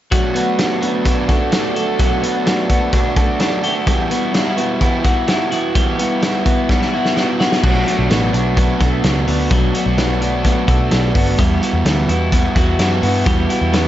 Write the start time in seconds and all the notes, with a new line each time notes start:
0.12 B2 F#3 A3 D4 F#4, kick, closed hi-hat
0.34 A3 B3 D4 F#4, closed hi-hat
0.58 F#3 A3 D4 F#4, snare, closed hi-hat
0.81 A3 B3 D4 F#4, closed hi-hat
1.04 B2 F#3 A3 D4 F#4, kick, closed hi-hat
1.29 A3 D4 F#4 A4, kick, snare, closed hi-hat
1.52 F#3 A3 D4 F#4, snare, closed hi-hat
1.76 A3 D4 F#4 A4, closed hi-hat
1.99 B2 F#3 A3 D4 F#4, kick, closed hi-hat
2.23 A3 B3 D4 F#4, closed hi-hat
2.46 F#3 A3 D4 F#4, snare, closed hi-hat
2.69 A3 B3 D4 F#4, kick, closed hi-hat
2.92 B2 F#3 A3 D4 F#4, kick, closed hi-hat
3.16 A3 D4 F#4 A4, kick, closed hi-hat
3.39 F#3 A3 D4 F#4, snare, closed hi-hat
3.63 A3 D4 F#4 G4, closed hi-hat
3.75 A4
3.86 E3 G3 B3 E4 F#4, kick, closed hi-hat
4.10 B3 E4 F#4, closed hi-hat
4.33 G3 B3 D4 E4 F#4, snare, closed hi-hat
4.46 E4
4.57 B3 E4 F#4, closed hi-hat
4.81 E3 G3 B3 E4 F#4, kick, closed hi-hat
5.04 B3 E4 F#4, kick, snare, closed hi-hat
5.27 G3 B3 E4 F#4, snare, closed hi-hat
5.51 B3 E4 F#4, closed hi-hat
5.75 E3 G3 B3 E4 F#4, kick, closed hi-hat
5.99 B3 E4 F#4, closed hi-hat
6.22 G3 B3 E4 F#4, snare, closed hi-hat
6.45 B3 E4 F#4, kick, closed hi-hat
6.69 E3 G3 B3 D4 E4 F#4, kick, snare
6.81 E4, snare
6.93 B3 E4 F#4
7.05 snare
7.15 G3 B3 E4 F#4, snare
7.39 B3 E4 F#4, snare
7.52 snare
7.63 B1 B2 F#3 A3 D4 F#4, kick, crash
7.86 A3 D4 F#4, closed hi-hat
7.99 B1
8.09 A1 B2 F#3 A3 B3 D4 F#4, snare, closed hi-hat
8.33 B1 A3 D4 F#4, closed hi-hat
8.56 F#3 A3 B3 D4 F#4, kick, closed hi-hat
8.79 B1 A3 D4 F#4 A4, kick, snare, closed hi-hat
9.03 C#2 B2 F#3 A3 D4 F#4, snare, closed hi-hat
9.27 D2 A3 B3 D4 F#4, open hi-hat
9.50 B1 B2 F#3 A3 D4 F#4, kick, closed hi-hat
9.74 A3 D4 F#4, closed hi-hat
9.86 B1
9.97 B2 F#3 A3 B3 D4 F#4, snare, closed hi-hat
10.22 A3 D4 F#4, closed hi-hat
10.44 F#3 A3 B3 D4 F#4, kick, closed hi-hat
10.67 B1 A3 D4 F#4 A4, kick, closed hi-hat
10.91 B1 B2 F#3 A3 D4 F#4, snare, closed hi-hat
11.15 G1 A3 B3 D4 F#4, kick, open hi-hat
11.38 E2 E3 G3 B3 E4 F#4, kick, closed hi-hat
11.61 B3 E4 F#4, closed hi-hat
11.73 E2
11.85 D2 E3 G3 B3 E4 F#4, snare, closed hi-hat
12.08 E2 B3 E4 F#4, closed hi-hat
12.32 G3 B3 E4 F#4, kick, closed hi-hat
12.56 E2 E4 F#4, kick, snare, closed hi-hat
12.60 B3
12.79 F#2 E3 G3 B3 E4 F#4, snare, closed hi-hat
13.02 G2 B3 E4 F#4, open hi-hat
13.06 B3
13.25 E2 E3 G3 B3 E4 F#4, kick, closed hi-hat
13.49 B3 E4 F#4, closed hi-hat
13.61 E2
13.73 E3 G3 B3 E4 F#4, snare, closed hi-hat